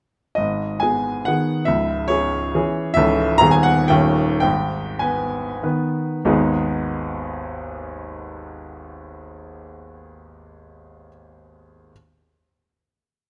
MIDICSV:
0, 0, Header, 1, 2, 480
1, 0, Start_track
1, 0, Key_signature, 5, "minor"
1, 0, Tempo, 441501
1, 409, Time_signature, 3, 2, 24, 8
1, 1376, Tempo, 427655
1, 3776, Tempo, 511073
1, 4736, Tempo, 584226
1, 5216, Tempo, 616650
1, 7136, Tempo, 587659
1, 8576, Tempo, 566038
1, 12015, End_track
2, 0, Start_track
2, 0, Title_t, "Grand piano"
2, 0, Program_c, 0, 0
2, 381, Note_on_c, 0, 75, 67
2, 412, Note_on_c, 0, 44, 41
2, 413, Note_on_c, 0, 32, 47
2, 643, Control_c, 0, 64, 127
2, 866, Note_on_c, 0, 80, 71
2, 884, Note_off_c, 0, 75, 0
2, 885, Note_off_c, 0, 44, 0
2, 886, Note_off_c, 0, 32, 0
2, 889, Note_on_c, 0, 59, 38
2, 900, Note_on_c, 0, 68, 42
2, 1328, Note_off_c, 0, 59, 0
2, 1333, Note_off_c, 0, 68, 0
2, 1360, Note_off_c, 0, 80, 0
2, 1361, Note_on_c, 0, 78, 73
2, 1383, Note_on_c, 0, 51, 37
2, 1384, Control_c, 0, 64, 0
2, 1390, Note_on_c, 0, 59, 39
2, 1392, Note_on_c, 0, 68, 41
2, 1792, Note_off_c, 0, 51, 0
2, 1795, Note_off_c, 0, 59, 0
2, 1796, Note_off_c, 0, 68, 0
2, 1811, Note_on_c, 0, 76, 75
2, 1825, Note_off_c, 0, 78, 0
2, 1837, Note_on_c, 0, 37, 53
2, 1840, Note_on_c, 0, 25, 48
2, 2040, Control_c, 0, 64, 127
2, 2287, Note_on_c, 0, 73, 88
2, 2304, Note_off_c, 0, 37, 0
2, 2305, Note_off_c, 0, 25, 0
2, 2305, Note_off_c, 0, 76, 0
2, 2312, Note_on_c, 0, 68, 53
2, 2317, Note_on_c, 0, 61, 44
2, 2758, Note_off_c, 0, 68, 0
2, 2760, Note_off_c, 0, 61, 0
2, 2809, Note_on_c, 0, 52, 50
2, 2813, Control_c, 0, 64, 0
2, 2818, Note_on_c, 0, 68, 55
2, 2821, Note_on_c, 0, 61, 45
2, 3233, Note_off_c, 0, 52, 0
2, 3237, Note_off_c, 0, 68, 0
2, 3239, Note_off_c, 0, 61, 0
2, 3253, Note_on_c, 0, 76, 96
2, 3261, Note_off_c, 0, 73, 0
2, 3278, Note_on_c, 0, 52, 53
2, 3281, Note_on_c, 0, 25, 59
2, 3286, Note_on_c, 0, 37, 71
2, 3290, Note_on_c, 0, 61, 51
2, 3297, Note_on_c, 0, 69, 50
2, 3510, Control_c, 0, 64, 127
2, 3733, Note_off_c, 0, 52, 0
2, 3739, Note_off_c, 0, 61, 0
2, 3742, Note_off_c, 0, 69, 0
2, 3749, Note_on_c, 0, 82, 111
2, 3764, Note_off_c, 0, 25, 0
2, 3765, Note_off_c, 0, 76, 0
2, 3767, Note_off_c, 0, 37, 0
2, 3772, Note_on_c, 0, 27, 63
2, 3772, Note_on_c, 0, 39, 67
2, 3774, Note_on_c, 0, 51, 55
2, 3777, Note_on_c, 0, 59, 52
2, 3781, Note_on_c, 0, 68, 53
2, 3784, Control_c, 0, 64, 0
2, 3877, Note_on_c, 0, 80, 73
2, 3880, Note_off_c, 0, 82, 0
2, 3968, Control_c, 0, 64, 127
2, 3989, Note_on_c, 0, 78, 90
2, 4000, Note_off_c, 0, 80, 0
2, 4202, Note_off_c, 0, 51, 0
2, 4203, Note_off_c, 0, 59, 0
2, 4206, Note_off_c, 0, 68, 0
2, 4223, Note_on_c, 0, 79, 91
2, 4225, Note_off_c, 0, 27, 0
2, 4225, Note_off_c, 0, 39, 0
2, 4232, Note_off_c, 0, 78, 0
2, 4242, Note_on_c, 0, 27, 62
2, 4242, Note_on_c, 0, 51, 49
2, 4243, Note_on_c, 0, 39, 68
2, 4248, Note_on_c, 0, 61, 48
2, 4250, Note_on_c, 0, 70, 45
2, 4254, Control_c, 0, 64, 0
2, 4462, Control_c, 0, 64, 127
2, 4699, Note_off_c, 0, 51, 0
2, 4700, Note_off_c, 0, 79, 0
2, 4702, Note_off_c, 0, 61, 0
2, 4703, Note_off_c, 0, 70, 0
2, 4715, Note_on_c, 0, 79, 88
2, 4721, Note_off_c, 0, 27, 0
2, 4722, Note_off_c, 0, 39, 0
2, 4732, Note_on_c, 0, 44, 57
2, 4735, Note_on_c, 0, 32, 52
2, 4750, Control_c, 0, 64, 0
2, 4942, Control_c, 0, 64, 127
2, 5199, Note_off_c, 0, 44, 0
2, 5201, Note_off_c, 0, 32, 0
2, 5202, Note_on_c, 0, 80, 65
2, 5206, Note_off_c, 0, 79, 0
2, 5218, Note_on_c, 0, 59, 46
2, 5221, Note_on_c, 0, 71, 46
2, 5673, Note_off_c, 0, 59, 0
2, 5674, Note_off_c, 0, 71, 0
2, 5696, Note_off_c, 0, 80, 0
2, 5698, Note_on_c, 0, 51, 41
2, 5702, Note_on_c, 0, 71, 45
2, 5704, Note_on_c, 0, 59, 41
2, 5712, Control_c, 0, 64, 0
2, 6147, Note_off_c, 0, 51, 0
2, 6149, Note_off_c, 0, 71, 0
2, 6150, Note_off_c, 0, 59, 0
2, 6180, Note_on_c, 0, 32, 64
2, 6183, Note_on_c, 0, 39, 54
2, 6183, Note_on_c, 0, 59, 57
2, 6185, Note_on_c, 0, 56, 50
2, 6187, Note_on_c, 0, 63, 54
2, 6191, Note_on_c, 0, 68, 53
2, 6384, Control_c, 0, 64, 127
2, 10135, Note_off_c, 0, 32, 0
2, 10139, Note_off_c, 0, 39, 0
2, 10139, Note_off_c, 0, 59, 0
2, 10141, Note_off_c, 0, 56, 0
2, 10143, Note_off_c, 0, 63, 0
2, 10148, Note_off_c, 0, 68, 0
2, 10850, Control_c, 0, 64, 0
2, 12015, End_track
0, 0, End_of_file